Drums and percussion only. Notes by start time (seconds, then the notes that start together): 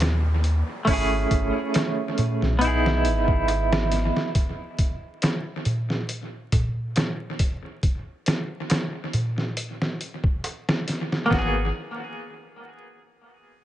0.00 snare, closed hi-hat, darbuka tek
0.44 closed hi-hat
0.87 kick, open hi-hat
1.31 kick, closed hi-hat
1.74 snare, closed hi-hat, darbuka tek
2.18 closed hi-hat, darbuka dum
2.42 snare
2.61 closed hi-hat
2.86 snare
3.05 closed hi-hat
3.28 kick
3.48 closed hi-hat, darbuka tek
3.73 snare
3.92 snare, closed hi-hat
4.16 snare
4.35 kick, closed hi-hat
4.79 kick, closed hi-hat
5.22 snare, closed hi-hat, darbuka tek
5.65 closed hi-hat, darbuka dum
5.90 snare
6.09 closed hi-hat
6.52 kick, closed hi-hat, darbuka dum
6.96 snare, closed hi-hat, darbuka tek
7.39 kick, closed hi-hat
7.83 kick, closed hi-hat
8.26 snare, closed hi-hat
8.70 snare, closed hi-hat, darbuka tek
9.13 closed hi-hat, darbuka dum
9.38 snare
9.57 closed hi-hat
9.82 snare
10.01 closed hi-hat
10.24 kick
10.44 closed hi-hat, darbuka tek
10.69 snare
10.88 snare, closed hi-hat
11.12 snare
11.31 kick, snare